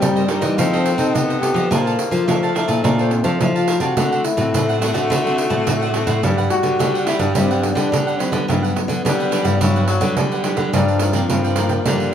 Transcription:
Already playing: G3 A#3 C4 D#4
0.01 G2 G3 D#4 A#4 C5 D#5, pandeiro
0.16 A#4 C5 D#5, pandeiro
0.27 G3 A#3 D4 D#4 A#4 C5 D#5, pandeiro
0.40 E3 D#4 A#4 C5 D#5, pandeiro
0.58 F3 C4 D#4 F4 A4 C5 D#5, pandeiro
0.73 C4 D#4 A4 C5 D#5, pandeiro
0.84 C4, muted cavaquinho stroke, pandeiro
0.97 C3 C4 D#4 A4 C5 D#5, pandeiro
1.14 C3 B3, pandeiro
1.29 A4 C5 D#5, pandeiro
1.41 C4 D#4 F4 G4 A4 C5 D#5, pandeiro
1.54 F3 A4 C5 D#5, pandeiro
1.70 A#2 A#3 D4 A4 A#4 C5 D5 F5 A5, pandeiro
1.86 D5 F5 A5, pandeiro
1.99 muted cavaquinho stroke, pandeiro
2.10 F3 D4 F4 A4 C5, pandeiro
2.27 F3 A3 A#4 D5 F5 A5, pandeiro
2.43 D5 F5 A5, pandeiro
2.54 D4 E4 A4 A#4 C5 D5 F5 A5, pandeiro
2.68 A#2 D5 F5 A5, pandeiro
2.84 A#2 D4 A#4 D5 F5 A5, pandeiro
2.98 D4 A4 C5 D5 F5 A5, pandeiro
3.11 C4, muted cavaquinho stroke, pandeiro
3.24 F3 D4 A4 C5 D5 F5 A5, pandeiro
3.40 F3 E4, pandeiro
3.55 F4 D5 F5 A5, pandeiro
3.67 D4 A4 A#4 C5 D5 F5 A5, pandeiro
3.80 C3 F#4 D5 F5 A5, pandeiro
3.97 D3 A3 C4 D4 F#4 C5 D5 F#5, pandeiro
4.12 C5 D5 F#5, pandeiro
4.24 E4, muted cavaquinho stroke, pandeiro
4.37 A2 A3 C4 F#4, pandeiro
4.53 A2 D4 C5 D5 F#5, pandeiro
4.69 C5 D5 F#5, pandeiro
4.81 A3 C4 D4 E4 F#4 C5 D5 F#5, pandeiro
4.93 D3 F#4 C5 D5 F#5, pandeiro
5.10 D3 D4 C5 D5 F#5, pandeiro
5.24 A3 C4 F#4 C5 D5 F#5, pandeiro
5.37 muted cavaquinho stroke, pandeiro
5.49 A2 A3 C4 F#4 C5 D5 F#5, pandeiro
5.67 A2, pandeiro
5.81 C5 D5 F#5, pandeiro
5.94 A3 C4 D4 F#4 C5 D5 F#5, pandeiro
6.07 A2 C5 D5 F#5, pandeiro
6.23 G2 F#3 G3 B3 D4 G4 B4 F#5, pandeiro
6.38 G4 B4 F#5, pandeiro
6.49 F#4, muted cavaquinho stroke, pandeiro
6.63 D3 B3 D4, pandeiro
6.79 D3 D4 G4 B4 F#5, pandeiro
6.94 G4 B4 F#5, pandeiro
7.06 B3 D4 E4 G4 B4 F#5, pandeiro
7.19 G2 D4 G4 B4 F#5, pandeiro
7.35 G2 C4 D4 G4 B4 F#5, pandeiro
7.50 F#3 B3 D4 G4 B4 F#5, pandeiro
7.63 B3, muted cavaquinho stroke, pandeiro
7.75 D3 B3 D4 G4 B4 F#5, pandeiro
7.92 D3, pandeiro
8.07 G4 B4 F#5, pandeiro
8.18 F#3 B3 C4 D4 G4 B4 F#5, pandeiro
8.31 D3 B3 G4 B4 F#5, pandeiro
8.48 G2 F#3 B3 D4 G4 B4 F#5, pandeiro
8.63 G4 B4 F#5, pandeiro
8.76 muted cavaquinho stroke, pandeiro
8.88 D3 F#3 B3 D4, pandeiro
9.05 D3 G3 D4 G4 B4 F#5, pandeiro
9.19 G4 B4 F#5, pandeiro
9.31 F#3 B3 D4 G4 B4 F#5, pandeiro
9.44 G2 G4 B4 F#5, pandeiro
9.61 G2 F#3 D4 G4 B4 F#5, pandeiro
9.76 F#3 B3 D4 G4 B4 F#5, pandeiro
9.88 F#3, muted cavaquinho stroke, pandeiro
10.01 D3 F#3 B3 D4 G4 B4 F#5, pandeiro
10.17 D3 G3, pandeiro
10.32 G4 B4 F#5, pandeiro
10.44 F#3 B3 D4 G4 B4 F#5, pandeiro
10.57 D3 G4 B4 F#5, pandeiro
10.72 G2 F3 A#3 D4 F4 A#4 D5 G5, pandeiro
10.88 pandeiro
10.99 F4 A#4 D5 G5, pandeiro
11.13 F3 A#3 C4 D4 F4 A#4 D5 G5, pandeiro
11.29 G2 D3, pandeiro
11.44 A#4 D5 G5, pandeiro
11.56 F3 A#3 D4 F4 A#4 D5 G5, pandeiro
11.69 A#4 D5 G5, pandeiro
11.85 G2 D3 F3 G3 A#3 D4 F4 A#4 D5 G5, pandeiro
12.00 pandeiro

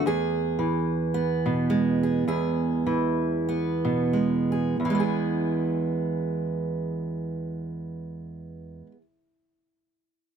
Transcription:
0.06 E2 G#4
0.59 E3
1.14 B3
1.46 B2
1.70 G#3
2.03 G#4
2.28 E2 G#4
2.86 E3
3.49 B3
3.85 B2
4.13 G#3
4.52 G#4
4.80 E2
4.85 E3
4.90 G#3
4.95 B3
5.00 G#4

